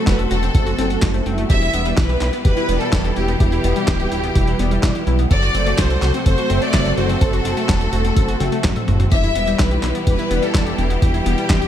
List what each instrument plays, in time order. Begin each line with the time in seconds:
Already playing: string section C3 F#3 A3 F#4 A4, analog polysynth A3 C4 F#4 C5
0.07 analog synth bass E1, synth arpeggio sound F#3, violin section B4, kick, snare, clap, closed hi-hat
0.19 analog polysynth A3 C4 F#4 C5, synth arpeggio sound A4, closed hi-hat
0.31 analog synth bass E1, synth arpeggio sound F#4, violin section A4, closed hi-hat
0.43 synth arpeggio sound C4, closed hi-hat
0.55 analog synth bass F#1, analog polysynth A3 C4 F#4 C5, synth arpeggio sound A4, kick, closed hi-hat
0.66 synth arpeggio sound F#4, closed hi-hat
0.78 analog synth bass F#1, analog polysynth A3 C4 F#4 F#5, synth arpeggio sound C4, snare, closed hi-hat
0.90 synth arpeggio sound F#5, closed hi-hat
1.02 analog synth bass F#1, synth arpeggio sound A4, kick, snare, clap, closed hi-hat
1.14 analog polysynth A3 C4 F#4 C5, synth arpeggio sound A3, closed hi-hat
1.26 analog synth bass F#1, analog polysynth G3 B3 E4 E5, synth arpeggio sound C4, closed hi-hat
1.38 synth arpeggio sound A3, closed hi-hat
1.50 analog synth bass E1, string section B2 E3 G3 E4 G4, synth arpeggio sound G4, violin section E5, kick, closed hi-hat
1.62 synth arpeggio sound E4, closed hi-hat
1.74 analog synth bass E1, analog polysynth G3 B3 E4 B4, synth arpeggio sound B3, closed hi-hat
1.86 synth arpeggio sound G3, closed hi-hat
1.97 analog synth bass B1, synth arpeggio sound E3, violin section B4, kick, snare, clap, closed hi-hat
2.09 analog polysynth G3 B3 E4 B4, synth arpeggio sound G4, closed hi-hat
2.21 analog synth bass B1, synth arpeggio sound E4, clap, closed hi-hat
2.33 synth arpeggio sound B3, closed hi-hat
2.45 analog synth bass E1, analog polysynth G3 B3 E4 B4, synth arpeggio sound G4, violin section B4, kick, closed hi-hat
2.57 synth arpeggio sound E4, closed hi-hat
2.69 analog synth bass E1, analog polysynth G3 B3 E4 D5, synth arpeggio sound B3, closed hi-hat
2.81 synth arpeggio sound G3, violin section A4, closed hi-hat
2.93 analog synth bass E1, synth arpeggio sound E3, kick, snare, clap, closed hi-hat
3.05 analog polysynth G3 B3 E4 B4, synth arpeggio sound G4, closed hi-hat
3.16 analog synth bass E1, synth arpeggio sound E4, violin section G4, closed hi-hat
3.28 synth arpeggio sound B3, closed hi-hat
3.40 analog synth bass E1, violin section G4, synth arpeggio sound G4, kick, closed hi-hat
3.52 synth arpeggio sound E4, closed hi-hat
3.64 analog synth bass E1, analog polysynth G3 B3 E4 B4, synth arpeggio sound B3, closed hi-hat
3.76 synth arpeggio sound G3, closed hi-hat
3.88 analog synth bass D1, synth arpeggio sound E3, kick, snare, clap, closed hi-hat
4.00 analog polysynth G3 B3 E4 B4, synth arpeggio sound G4, closed hi-hat
4.12 analog synth bass D1, synth arpeggio sound E4, closed hi-hat
4.24 synth arpeggio sound B3, closed hi-hat
4.35 analog synth bass E1, analog polysynth G3 B3 E4 B4, synth arpeggio sound G4, kick, closed hi-hat
4.47 synth arpeggio sound E4, closed hi-hat
4.59 analog synth bass E1, analog polysynth G3 B3 E4 D5, synth arpeggio sound B3, snare, closed hi-hat
4.71 synth arpeggio sound G3, closed hi-hat
4.83 analog synth bass B1, synth arpeggio sound E3, kick, snare, clap, closed hi-hat
4.95 analog polysynth G3 B3 E4 B4, synth arpeggio sound G4, closed hi-hat
5.07 analog synth bass B1, synth arpeggio sound E4, closed hi-hat
5.19 synth arpeggio sound B3, closed hi-hat
5.31 analog synth bass F#1, string section C3 F#3 A3 F#4 A4, synth arpeggio sound A4, violin section D5, kick, closed hi-hat
5.43 synth arpeggio sound F#4, closed hi-hat
5.55 analog synth bass F#1, analog polysynth A3 C4 F#4 C5, synth arpeggio sound C4, closed hi-hat
5.66 synth arpeggio sound A3, closed hi-hat
5.78 analog synth bass C2, synth arpeggio sound F#3, violin section C5, kick, snare, clap, closed hi-hat
5.90 analog polysynth A3 C4 F#4 C5, synth arpeggio sound A4, closed hi-hat
6.02 analog synth bass C2, synth arpeggio sound F#4, clap, closed hi-hat
6.14 synth arpeggio sound C4, closed hi-hat
6.26 analog synth bass F#1, analog polysynth A3 C4 F#4 C5, synth arpeggio sound A4, violin section C5, kick, closed hi-hat
6.38 synth arpeggio sound F#4, closed hi-hat
6.50 analog synth bass F#1, analog polysynth A3 C4 F#4 E5, synth arpeggio sound C4, closed hi-hat
6.62 synth arpeggio sound A3, violin section D5, closed hi-hat
6.74 analog synth bass F#1, synth arpeggio sound F#3, kick, snare, clap, closed hi-hat
6.86 analog polysynth A3 C4 F#4 C5, synth arpeggio sound A4, closed hi-hat
6.98 analog synth bass F#1, synth arpeggio sound F#4, violin section C5, closed hi-hat
7.09 synth arpeggio sound C4, closed hi-hat
7.21 analog synth bass F#1, synth arpeggio sound A4, violin section A4, kick, closed hi-hat
7.33 synth arpeggio sound F#4, closed hi-hat
7.45 analog synth bass F#1, analog polysynth A3 C4 F#4 C5, synth arpeggio sound C4, closed hi-hat
7.57 synth arpeggio sound A3, closed hi-hat
7.69 analog synth bass E1, synth arpeggio sound F#3, kick, snare, clap, closed hi-hat
7.81 analog polysynth A3 C4 F#4 C5, synth arpeggio sound A4, closed hi-hat
7.93 analog synth bass E1, synth arpeggio sound F#4, closed hi-hat
8.05 synth arpeggio sound C4, closed hi-hat
8.16 analog synth bass F#1, analog polysynth A3 C4 F#4 C5, synth arpeggio sound A4, kick, closed hi-hat
8.28 synth arpeggio sound F#4, closed hi-hat
8.40 analog synth bass F#1, analog polysynth A3 C4 F#4 E5, synth arpeggio sound C4, snare, closed hi-hat, high tom
8.52 synth arpeggio sound A3, closed hi-hat
8.64 analog synth bass F#1, synth arpeggio sound F#3, kick, snare, clap, closed hi-hat, mid tom
8.76 analog polysynth A3 C4 F#4 C5, synth arpeggio sound A4, closed hi-hat, mid tom
8.88 analog synth bass F#1, synth arpeggio sound F#4, closed hi-hat, mid tom
9.00 synth arpeggio sound C4, closed hi-hat, mid tom
9.12 analog synth bass E1, string section B2 E3 G3 E4 G4, synth arpeggio sound G4, violin section E5, kick, closed hi-hat
9.24 synth arpeggio sound E4, closed hi-hat
9.35 analog synth bass E1, analog polysynth G3 B3 E4 B4, synth arpeggio sound B3, closed hi-hat
9.47 synth arpeggio sound G3, closed hi-hat
9.59 analog synth bass B1, synth arpeggio sound E3, violin section B4, kick, snare, clap, closed hi-hat
9.71 analog polysynth G3 B3 E4 B4, synth arpeggio sound G4, closed hi-hat
9.83 analog synth bass B1, synth arpeggio sound E4, clap, closed hi-hat
9.95 synth arpeggio sound B3, closed hi-hat
10.07 analog synth bass E1, analog polysynth G3 B3 E4 B4, synth arpeggio sound G4, violin section B4, kick, closed hi-hat
10.19 synth arpeggio sound E4, closed hi-hat
10.31 analog synth bass E1, analog polysynth G3 B3 E4 D5, synth arpeggio sound B3, closed hi-hat
10.43 synth arpeggio sound G3, violin section A4, closed hi-hat
10.55 analog synth bass E1, synth arpeggio sound E3, kick, snare, clap, closed hi-hat
10.66 analog polysynth G3 B3 E4 B4, synth arpeggio sound G4, closed hi-hat
10.78 analog synth bass E1, synth arpeggio sound E4, violin section G4, closed hi-hat
10.90 synth arpeggio sound B3, closed hi-hat
11.02 analog synth bass E1, synth arpeggio sound G4, violin section G4, kick, closed hi-hat
11.14 synth arpeggio sound E4, closed hi-hat
11.26 analog synth bass E1, analog polysynth G3 B3 E4 B4, synth arpeggio sound B3, closed hi-hat
11.38 synth arpeggio sound G3, closed hi-hat
11.50 analog synth bass D1, synth arpeggio sound E3, kick, snare, clap, closed hi-hat
11.62 analog polysynth G3 B3 E4 B4, synth arpeggio sound G4, closed hi-hat